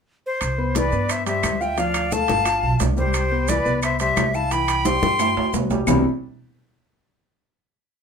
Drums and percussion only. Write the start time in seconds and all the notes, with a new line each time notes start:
0.41 high conga, high timbale, claves, maracas
0.59 high conga
0.75 high conga, high timbale, maracas
0.92 high conga, maracas
1.09 high conga, high timbale, claves, maracas
1.26 high conga, high timbale, maracas
1.43 high conga, high timbale, claves, maracas
1.61 maracas
1.77 high conga, high timbale, maracas
1.94 high conga, high timbale, claves, maracas
2.11 high conga, maracas
2.28 high conga, high timbale, maracas
2.45 high conga, high timbale, claves, maracas
2.64 high conga
2.80 high conga, high timbale, low timbale, maracas
2.97 high conga, maracas
3.14 high timbale, claves, maracas
3.32 high conga
3.48 high conga, high timbale, maracas
3.65 high conga, maracas
3.82 high conga, high timbale, claves, maracas
3.99 high conga, high timbale, maracas
4.17 high conga, high timbale, low timbale, claves, maracas
4.34 maracas
4.51 high conga, high timbale, maracas
4.68 high conga, high timbale, claves, maracas
4.85 high conga, high timbale, maracas
5.03 high conga, maracas
5.19 high conga, low timbale, claves, maracas
5.37 high conga, low timbale
5.53 high conga, low timbale, maracas
5.70 high conga, low timbale, maracas
5.87 low conga, low timbale, claves, maracas